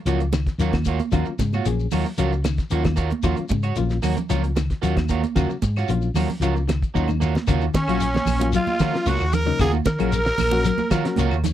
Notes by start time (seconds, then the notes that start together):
0.05 C#2 F3 F#3 A#3 C#4 F4 F#4 C#5, closed hi-hat, shekere
0.20 muted clean electric guitar stroke, closed hi-hat, shekere
0.33 D#3, muted clean electric guitar stroke, snare, closed hi-hat, high conga, claves, shekere
0.47 kick, snare, closed hi-hat, shekere
0.58 D#2 F#3 A#3 C#4 F4 F#4 C#5, closed hi-hat, shekere
0.73 D#3, muted clean electric guitar stroke, kick, snare, closed hi-hat, high conga, claves, shekere
0.85 A#3 F4 F#4 C#5, kick, closed hi-hat, high conga, shekere
0.99 muted clean electric guitar stroke, closed hi-hat, high conga, shekere
1.11 D#2 D#3 F#3 A#3 C#4 F4 F#4, muted clean electric guitar stroke, kick, closed hi-hat, low conga, claves, shekere
1.25 muted clean electric guitar stroke, muted fingered electric bass stroke, shekere
1.39 G#2 C#3, muted clean electric guitar stroke, kick, snare, closed hi-hat, high conga, shekere
1.53 F4 F#4 C#5, high conga, claves, shekere
1.65 A#1 F3 F#3 A#3 C#4 G#4, muted clean electric guitar stroke, closed hi-hat, shekere
1.79 shekere
1.91 D#2 F#3 A#3 F4 F#4 C#5, open hi-hat, low conga, claves, shekere
2.05 muted clean electric guitar stroke, shekere
2.18 C#2 F3 F#3 A#3 C#4 F4 F#4 C#5, closed hi-hat, shekere
2.32 muted clean electric guitar stroke, shekere
2.44 D#3, muted clean electric guitar stroke, snare, closed hi-hat, high conga, claves, shekere
2.58 kick, snare, closed hi-hat, shekere
2.70 D#2 F#3 A#3 C#4 F4 F#4 C#5, muted clean electric guitar stroke, closed hi-hat, shekere
2.84 D#3, muted clean electric guitar stroke, kick, snare, closed hi-hat, high conga, claves, shekere
2.96 A#3 F4 F#4 C#5, kick, closed hi-hat, shekere
3.10 muted clean electric guitar stroke, closed hi-hat, high conga, shekere
3.23 D#2 D#3 F#3 A#3 C#4 F4 F#4 C#5, kick, closed hi-hat, low conga, claves, shekere
3.36 muted clean electric guitar stroke, closed hi-hat, shekere
3.49 G#2 C#3, muted clean electric guitar stroke, kick, closed hi-hat, high conga, shekere
3.63 F#4 C#5, muted clean electric guitar stroke, closed hi-hat, claves, shekere
3.76 A#1 F3 F#3 A#3 C#4 F4, muted clean electric guitar stroke, closed hi-hat, shekere
3.90 snare, shekere
4.02 D#2 F#3 A#3 F#4 C#5, muted clean electric guitar stroke, open hi-hat, low conga, claves, shekere
4.17 muted clean electric guitar stroke, closed hi-hat, low conga, shekere
4.29 C#2 F3 F#3 A#3 C#4 F4 C#5, muted clean electric guitar stroke, closed hi-hat, shekere
4.44 muted clean electric guitar stroke, closed hi-hat, shekere
4.56 D#3, muted clean electric guitar stroke, snare, closed hi-hat, high conga, claves, shekere
4.70 kick, snare, closed hi-hat, shekere
4.82 D#2 F#3 A#3 C#4 F4 F#4 C#5, closed hi-hat, shekere
4.97 D#3, muted clean electric guitar stroke, kick, snare, closed hi-hat, high conga, claves, shekere
5.09 A#3 F4 F#4 C#5, kick, closed hi-hat, high conga, shekere
5.23 muted clean electric guitar stroke, closed hi-hat, high conga, shekere
5.35 D#2 C#3 F#3 A#3 C#4 F4 F#4, muted clean electric guitar stroke, kick, closed hi-hat, low conga, claves, shekere
5.50 muted clean electric guitar stroke, shekere
5.62 G#2, muted clean electric guitar stroke, kick, closed hi-hat, high conga, shekere
5.76 F4 F#4 C#5, snare, claves, shekere
5.88 A#1 F3 F#3 A#3 C#4 F4, muted clean electric guitar stroke, closed hi-hat, shekere
6.02 shekere
6.14 D#2 F#3 A#3 F4 F#4 C#5, open hi-hat, low conga, claves, shekere
6.30 muted clean electric guitar stroke, low conga, shekere
6.40 C#2 F3 F#3 A#3 C#4 F4 F#4 C#5, closed hi-hat, shekere
6.55 muted clean electric guitar stroke, shekere
6.68 D#3, muted clean electric guitar stroke, snare, closed hi-hat, high conga, claves, shekere
6.82 kick, closed hi-hat, shekere
6.94 D#2 F#3 A#3 C#4 D#4 F4 F#4 C#5, kick, shekere
7.08 D#3, muted clean electric guitar stroke, high conga, claves, shekere
7.20 A#3 F4 F#4 C#5, mid tom, shekere
7.35 muted clean electric guitar stroke, snare, high conga, shekere
7.47 D#2 C#3 A#3 F4 F#4 C#5, kick, closed hi-hat, claves, shekere
7.61 D#3, shekere
7.74 D#3 C#4, muted clean electric guitar stroke, kick, snare, closed hi-hat, high conga, shekere
7.87 A#1 F#3 A#3 C#4 F4 F#4 C#5, closed hi-hat, claves, shekere
8.00 muted clean electric guitar stroke, closed hi-hat, shekere
8.14 muted clean electric guitar stroke, snare, high conga, shekere
8.25 A#1, open hi-hat, high conga, low conga, claves, shekere
8.40 F#3 A#3 C#4 F4, muted clean electric guitar stroke, closed hi-hat, high conga, shekere
8.53 F#3 F4, closed hi-hat, shekere
8.67 muted fingered electric bass stroke, muted clean electric guitar stroke, high conga, shekere
8.79 D#3 F3 A#3 F4 F#4 C#5, kick, snare, closed hi-hat, low conga, claves, shekere
8.93 F#3 A#3 C#4 F4, muted clean electric guitar stroke, snare, shekere
9.06 C#2 C#3 A#3 F4 F#4 C#5, closed hi-hat, high conga, shekere
9.20 D#2, claves, shekere
9.33 D#3 A#4, muted clean electric guitar stroke, closed hi-hat, low conga, shekere
9.46 C#3 F#3 A#3 C#4 D#4, muted clean electric guitar stroke, shekere
9.59 D#2 C#3 A#3 F4 F#4 G#4, muted clean electric guitar stroke, kick, closed hi-hat, claves, shekere
9.73 D#3, high conga, shekere
9.85 D#3 A#4, muted clean electric guitar stroke, kick, snare, closed hi-hat, high conga, shekere
9.99 A#1 F#3 A#3 C#4 F4 F#4 G#4 C#5, closed hi-hat, claves, shekere
10.12 muted clean electric guitar stroke, closed hi-hat, shekere
10.25 muted clean electric guitar stroke, snare, shekere
10.38 A#1, open hi-hat, high conga, low conga, claves, shekere
10.51 F#3 A#3 C#4 F#4, muted clean electric guitar stroke, high conga, shekere
10.65 F#3, snare, closed hi-hat, shekere
10.78 muted clean electric guitar stroke, muted fingered electric bass stroke, high conga, shekere
10.91 D#3 F3 A#3 F4 F#4 C#5, kick, snare, closed hi-hat, low conga, claves, shekere
11.04 F#3 A#3 C#4 F#4, muted clean electric guitar stroke, snare, closed hi-hat, shekere
11.16 C#2 C#3 A#3 F4 F#4 C#5, closed hi-hat, high conga, shekere
11.31 D#2, claves, shekere
11.44 D#3, muted clean electric guitar stroke, closed hi-hat, low conga, shekere